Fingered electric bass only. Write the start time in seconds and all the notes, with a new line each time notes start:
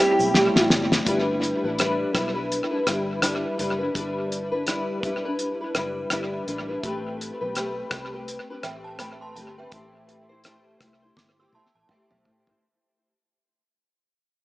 0.19 B1
0.55 A1
0.70 F#1
1.07 G1
1.64 A1
2.15 B1
2.87 G1
3.59 F#1
3.95 G1
5.03 B1
5.75 F#1
6.11 G1
6.47 A1
6.84 A1
7.41 B1
7.91 C2
8.64 A1
9.36 G1
9.72 A1
10.81 C2
11.17 G1
11.53 muted fingered electric bass stroke
11.75 A1
12.10 B1
12.25 A2